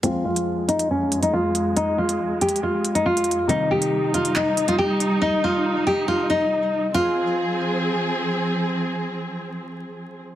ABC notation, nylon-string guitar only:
X:1
M:4/4
L:1/16
Q:1/4=139
K:Fm
V:1 name="Nylon-string guitar"
C2 F4 E2 D3 E F4 | E2 F4 G2 F3 E F4 | E2 G4 F2 E3 F G4 | E2 F4 G2 F2 E6 |
F12 z4 | z16 |]